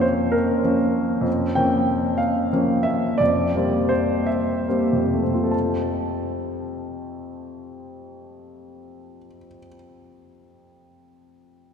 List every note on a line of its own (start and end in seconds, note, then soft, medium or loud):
0.00 1.21 F2 soft
0.00 0.61 F3 soft
0.00 0.61 A#3 soft
0.00 0.61 C#4 soft
0.00 0.33 C5 medium
0.00 1.28 C#5 medium
0.32 1.26 A#4 medium
0.64 1.22 F3 soft
0.64 1.23 A#3 soft
0.64 1.23 C#4 soft
1.21 1.53 F2 soft
1.55 2.48 F3 soft
1.55 2.49 A#3 soft
1.55 2.49 C#4 soft
1.55 2.19 G5 medium
2.18 2.84 F5 medium
2.53 3.15 F3 soft
2.53 3.16 A#3 soft
2.53 3.16 C#4 soft
2.83 3.18 E5 medium
3.18 3.54 F2 soft
3.18 3.90 D5 medium
3.55 4.65 G3 soft
3.55 4.66 A#3 soft
3.55 4.66 C4 soft
3.89 4.28 C5 medium
4.26 5.52 E5 medium
4.68 5.49 G3 soft
4.68 5.49 A#3 soft
4.68 5.22 C4 soft
4.93 9.16 F2 soft
5.03 9.27 C3 soft
5.13 9.36 A3 soft
5.23 9.47 C4 soft
5.33 9.57 F4 soft
5.43 9.67 A4 soft
5.51 9.75 A5 soft